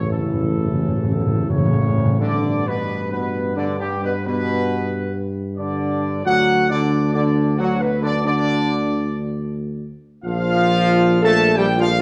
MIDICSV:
0, 0, Header, 1, 6, 480
1, 0, Start_track
1, 0, Tempo, 703400
1, 70, Time_signature, 3, 2, 24, 8
1, 1510, Tempo, 679502
1, 2950, Tempo, 665188
1, 8554, End_track
2, 0, Start_track
2, 0, Title_t, "Trumpet section"
2, 0, Program_c, 0, 61
2, 71, Note_on_c, 0, 69, 72
2, 999, Note_off_c, 0, 69, 0
2, 1023, Note_on_c, 0, 73, 76
2, 1481, Note_off_c, 0, 73, 0
2, 1508, Note_on_c, 0, 74, 98
2, 1810, Note_off_c, 0, 74, 0
2, 1834, Note_on_c, 0, 71, 109
2, 2142, Note_off_c, 0, 71, 0
2, 2151, Note_on_c, 0, 71, 83
2, 2449, Note_off_c, 0, 71, 0
2, 2467, Note_on_c, 0, 74, 86
2, 2618, Note_off_c, 0, 74, 0
2, 2633, Note_on_c, 0, 67, 90
2, 2781, Note_off_c, 0, 67, 0
2, 2799, Note_on_c, 0, 71, 88
2, 2940, Note_off_c, 0, 71, 0
2, 2949, Note_on_c, 0, 71, 109
2, 3645, Note_off_c, 0, 71, 0
2, 3905, Note_on_c, 0, 74, 95
2, 4365, Note_off_c, 0, 74, 0
2, 4397, Note_on_c, 0, 78, 125
2, 4699, Note_off_c, 0, 78, 0
2, 4715, Note_on_c, 0, 74, 113
2, 5016, Note_off_c, 0, 74, 0
2, 5034, Note_on_c, 0, 74, 94
2, 5334, Note_off_c, 0, 74, 0
2, 5360, Note_on_c, 0, 78, 92
2, 5509, Note_off_c, 0, 78, 0
2, 5524, Note_on_c, 0, 71, 92
2, 5682, Note_on_c, 0, 74, 111
2, 5683, Note_off_c, 0, 71, 0
2, 5831, Note_off_c, 0, 74, 0
2, 5840, Note_on_c, 0, 74, 126
2, 6535, Note_off_c, 0, 74, 0
2, 7278, Note_on_c, 0, 77, 127
2, 7963, Note_off_c, 0, 77, 0
2, 7993, Note_on_c, 0, 81, 127
2, 8215, Note_off_c, 0, 81, 0
2, 8227, Note_on_c, 0, 79, 115
2, 8389, Note_off_c, 0, 79, 0
2, 8401, Note_on_c, 0, 77, 125
2, 8545, Note_off_c, 0, 77, 0
2, 8554, End_track
3, 0, Start_track
3, 0, Title_t, "French horn section"
3, 0, Program_c, 1, 60
3, 66, Note_on_c, 1, 57, 58
3, 66, Note_on_c, 1, 64, 54
3, 472, Note_off_c, 1, 57, 0
3, 472, Note_off_c, 1, 64, 0
3, 546, Note_on_c, 1, 61, 57
3, 770, Note_off_c, 1, 61, 0
3, 790, Note_on_c, 1, 59, 60
3, 1010, Note_off_c, 1, 59, 0
3, 1029, Note_on_c, 1, 57, 56
3, 1030, Note_on_c, 1, 61, 61
3, 1253, Note_off_c, 1, 57, 0
3, 1263, Note_on_c, 1, 55, 55
3, 1485, Note_off_c, 1, 61, 0
3, 1490, Note_off_c, 1, 55, 0
3, 1505, Note_on_c, 1, 62, 84
3, 1809, Note_off_c, 1, 62, 0
3, 1834, Note_on_c, 1, 59, 77
3, 2132, Note_off_c, 1, 59, 0
3, 2147, Note_on_c, 1, 59, 83
3, 2447, Note_off_c, 1, 59, 0
3, 2471, Note_on_c, 1, 62, 82
3, 2620, Note_off_c, 1, 62, 0
3, 2632, Note_on_c, 1, 55, 72
3, 2703, Note_off_c, 1, 55, 0
3, 2792, Note_on_c, 1, 59, 86
3, 2863, Note_off_c, 1, 59, 0
3, 2946, Note_on_c, 1, 59, 84
3, 3643, Note_off_c, 1, 59, 0
3, 3912, Note_on_c, 1, 62, 85
3, 4369, Note_off_c, 1, 62, 0
3, 4394, Note_on_c, 1, 66, 93
3, 4697, Note_off_c, 1, 66, 0
3, 4722, Note_on_c, 1, 62, 91
3, 5034, Note_off_c, 1, 62, 0
3, 5043, Note_on_c, 1, 62, 87
3, 5339, Note_off_c, 1, 62, 0
3, 5357, Note_on_c, 1, 66, 102
3, 5508, Note_off_c, 1, 66, 0
3, 5515, Note_on_c, 1, 59, 84
3, 5667, Note_off_c, 1, 59, 0
3, 5675, Note_on_c, 1, 62, 93
3, 5819, Note_off_c, 1, 62, 0
3, 5828, Note_on_c, 1, 62, 104
3, 6529, Note_off_c, 1, 62, 0
3, 7266, Note_on_c, 1, 65, 114
3, 7957, Note_off_c, 1, 65, 0
3, 7979, Note_on_c, 1, 69, 122
3, 8208, Note_off_c, 1, 69, 0
3, 8222, Note_on_c, 1, 67, 99
3, 8296, Note_off_c, 1, 67, 0
3, 8378, Note_on_c, 1, 65, 103
3, 8453, Note_off_c, 1, 65, 0
3, 8554, End_track
4, 0, Start_track
4, 0, Title_t, "Trombone section"
4, 0, Program_c, 2, 61
4, 69, Note_on_c, 2, 49, 57
4, 69, Note_on_c, 2, 52, 58
4, 998, Note_off_c, 2, 49, 0
4, 998, Note_off_c, 2, 52, 0
4, 1026, Note_on_c, 2, 49, 78
4, 1483, Note_off_c, 2, 49, 0
4, 1506, Note_on_c, 2, 50, 99
4, 1809, Note_off_c, 2, 50, 0
4, 1834, Note_on_c, 2, 47, 77
4, 2132, Note_off_c, 2, 47, 0
4, 2157, Note_on_c, 2, 47, 76
4, 2452, Note_off_c, 2, 47, 0
4, 2469, Note_on_c, 2, 50, 101
4, 2619, Note_off_c, 2, 50, 0
4, 2625, Note_on_c, 2, 43, 81
4, 2776, Note_off_c, 2, 43, 0
4, 2795, Note_on_c, 2, 47, 90
4, 2865, Note_off_c, 2, 47, 0
4, 2956, Note_on_c, 2, 47, 94
4, 3648, Note_off_c, 2, 47, 0
4, 3917, Note_on_c, 2, 50, 96
4, 4371, Note_off_c, 2, 50, 0
4, 4401, Note_on_c, 2, 54, 91
4, 4701, Note_off_c, 2, 54, 0
4, 4728, Note_on_c, 2, 50, 87
4, 5023, Note_off_c, 2, 50, 0
4, 5038, Note_on_c, 2, 50, 91
4, 5336, Note_off_c, 2, 50, 0
4, 5365, Note_on_c, 2, 54, 103
4, 5512, Note_off_c, 2, 54, 0
4, 5530, Note_on_c, 2, 47, 77
4, 5600, Note_off_c, 2, 47, 0
4, 5673, Note_on_c, 2, 50, 97
4, 5747, Note_off_c, 2, 50, 0
4, 5846, Note_on_c, 2, 50, 94
4, 6538, Note_off_c, 2, 50, 0
4, 7285, Note_on_c, 2, 53, 127
4, 7967, Note_off_c, 2, 53, 0
4, 7995, Note_on_c, 2, 57, 110
4, 8216, Note_off_c, 2, 57, 0
4, 8237, Note_on_c, 2, 55, 117
4, 8308, Note_off_c, 2, 55, 0
4, 8397, Note_on_c, 2, 53, 101
4, 8468, Note_off_c, 2, 53, 0
4, 8554, End_track
5, 0, Start_track
5, 0, Title_t, "Timpani"
5, 0, Program_c, 3, 47
5, 18, Note_on_c, 3, 45, 58
5, 66, Note_off_c, 3, 45, 0
5, 74, Note_on_c, 3, 45, 67
5, 118, Note_off_c, 3, 45, 0
5, 127, Note_on_c, 3, 45, 62
5, 168, Note_off_c, 3, 45, 0
5, 176, Note_on_c, 3, 45, 70
5, 224, Note_off_c, 3, 45, 0
5, 232, Note_on_c, 3, 45, 66
5, 277, Note_off_c, 3, 45, 0
5, 286, Note_on_c, 3, 45, 59
5, 331, Note_off_c, 3, 45, 0
5, 339, Note_on_c, 3, 45, 70
5, 384, Note_off_c, 3, 45, 0
5, 392, Note_on_c, 3, 45, 66
5, 437, Note_off_c, 3, 45, 0
5, 445, Note_on_c, 3, 45, 67
5, 491, Note_off_c, 3, 45, 0
5, 499, Note_on_c, 3, 45, 77
5, 544, Note_off_c, 3, 45, 0
5, 553, Note_on_c, 3, 45, 71
5, 596, Note_off_c, 3, 45, 0
5, 604, Note_on_c, 3, 45, 78
5, 645, Note_off_c, 3, 45, 0
5, 653, Note_on_c, 3, 45, 70
5, 702, Note_off_c, 3, 45, 0
5, 710, Note_on_c, 3, 45, 76
5, 753, Note_off_c, 3, 45, 0
5, 761, Note_on_c, 3, 45, 82
5, 809, Note_off_c, 3, 45, 0
5, 817, Note_on_c, 3, 45, 88
5, 858, Note_off_c, 3, 45, 0
5, 866, Note_on_c, 3, 45, 88
5, 908, Note_off_c, 3, 45, 0
5, 917, Note_on_c, 3, 45, 85
5, 959, Note_off_c, 3, 45, 0
5, 968, Note_on_c, 3, 45, 80
5, 1015, Note_off_c, 3, 45, 0
5, 1023, Note_on_c, 3, 45, 92
5, 1069, Note_off_c, 3, 45, 0
5, 1077, Note_on_c, 3, 45, 100
5, 1119, Note_off_c, 3, 45, 0
5, 1127, Note_on_c, 3, 45, 103
5, 1173, Note_off_c, 3, 45, 0
5, 1181, Note_on_c, 3, 45, 101
5, 1227, Note_off_c, 3, 45, 0
5, 1235, Note_on_c, 3, 45, 93
5, 1285, Note_off_c, 3, 45, 0
5, 1293, Note_on_c, 3, 45, 91
5, 1340, Note_off_c, 3, 45, 0
5, 1349, Note_on_c, 3, 45, 99
5, 1394, Note_off_c, 3, 45, 0
5, 1403, Note_on_c, 3, 45, 100
5, 1455, Note_off_c, 3, 45, 0
5, 8554, End_track
6, 0, Start_track
6, 0, Title_t, "Tuba"
6, 0, Program_c, 4, 58
6, 0, Note_on_c, 4, 33, 85
6, 1252, Note_off_c, 4, 33, 0
6, 1510, Note_on_c, 4, 43, 79
6, 4370, Note_off_c, 4, 43, 0
6, 4401, Note_on_c, 4, 38, 79
6, 7055, Note_off_c, 4, 38, 0
6, 7278, Note_on_c, 4, 34, 109
6, 8554, Note_off_c, 4, 34, 0
6, 8554, End_track
0, 0, End_of_file